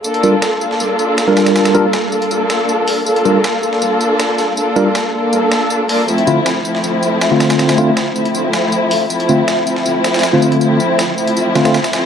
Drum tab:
HH |--x-----------------------------|--------------x-------------o---|--x-----------------------------|----------------------------o---|
TB |x---x---x---x---x---x---x---x-x-|x-x-x---x---x---x---x---x-------|x---x---x---x---x---x---x---x---|x---x---x-------x---x---x-------|
SD |--------o-----o---------o---o-o-|o-o-----o-----------o-----------|--------o-----o---------o---o---|--------o-----------o-----------|

HH |--x-----------------------------|--------------x-------------o---|--x---------------------------x-|--------------x-----------------|
TB |x---x---x---x---x---x---x---x-x-|x-x-x---x---x---x---x---x-------|x---x---x---x---x---x-xxx---x---|x---x---x---x---x---x-x-x-x-x---|
SD |--------o-----o---------o---o-o-|o-o-----o-----------o-----------|--------o-----o-----o-ooo-------|--------o-----------o-o-o-o-o---|